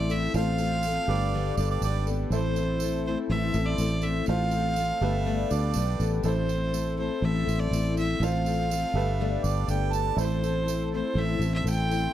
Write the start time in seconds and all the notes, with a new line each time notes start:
Already playing: A1 A3 C4 E4 A4 C5 D5
0.09 A3 C4 E4 A4 E5, tambourine
0.32 A1 A3 C4 F4 A4 C5 F5, tambourine
0.37 F4 A4
0.58 F4 A4, tambourine
0.62 C4
0.83 A3 C4 F4, tambourine
0.88 A4
1.07 G1 D4 G4 A4 B4 D5
1.11 G3 B3
1.34 G2 D3 G3 B3 D4 A4
1.57 G1 G3 B3 D4 A4 D5, tambourine
1.71 D5
1.81 G#1 G3 B3 D5, tambourine
1.86 D4 A4
2.06 G3 B3 D4 A4, tambourine
2.29 A1 A2 E3 A3 C4 E4 A4 C5, tambourine
2.33 E4 A4 C5
2.56 C4 E4 A4, tambourine
2.60 A3
2.80 A3 C4 E4, tambourine
2.84 A4
3.07 A3 C4 E4 A4 C5
3.29 A1 A2 E3 A3 A4 E5
3.34 C4 E4
3.54 A1 C4 E4 A4, tambourine
3.58 A3
3.66 D5
3.78 A1 A3 C4 E4 A4, tambourine
4.02 C4 E4 A4 E5, tambourine
4.06 A3
4.26 A1 A3 C4 F4 A4 C5 F5, tambourine
4.51 F4 A4, tambourine
4.56 C4
4.76 A3 C4 F4, tambourine
4.81 A4
5.01 G1 A3 B3 D4 G4 A4 B4 E5, tambourine
5.25 G2 D3 A3 B3 D4 A4, tambourine
5.49 D2 A3 B3 D4 A4 D5, tambourine
5.74 B1 A3 B3 D4 A4, tambourine
5.99 A1 A3 B3 D4 A4, tambourine
6.22 A1 A2 E3 A3 C4 E4 A4 C5, tambourine
6.48 A3 C4 E4 A4, tambourine
6.71 A3 C4 E4 A4, tambourine
6.97 A3 C4 E4 A4 C5
7.22 A1 A2 E3 A3 C4 E4 A4 E5
7.45 A1 A3 C4 E4 A4, tambourine
7.59 D5
7.71 A1 A3 C4 E4, tambourine
7.75 A4
7.97 A3 C4 E4 A4 E5, tambourine
8.20 A1 A3 C4 F4 A4 C5 F5, tambourine
8.24 A4
8.45 C4 F4 A4, tambourine
8.70 A3 C4 F4 A4, tambourine
8.93 G1 D4 G4 A4 B4 E5
8.98 A3 B3
9.20 G2 D3 A3 B3 D4 A4
9.42 G1 A3 B3 D4 A4 D5, tambourine
9.67 G1 A3 B3 D4 A4 G5, tambourine
9.92 A3 B3 D4 A4 A5, tambourine
10.16 A1 A2 E3 A3 C4 E4 A4 C5, tambourine
10.43 A3 C4 E4 A4, tambourine
10.66 A3 C4 E4 A4, tambourine
10.92 A3 C4 E4 A4 C5
11.15 A1 A2 E3 A3 C4 E4 A4 E5
11.39 A1 C4 E4 A4, tambourine
11.44 A3
11.54 E5
11.64 A1 A3 C4 E4 A4, tambourine
11.69 G5
11.90 A3 C4 E4 A4, tambourine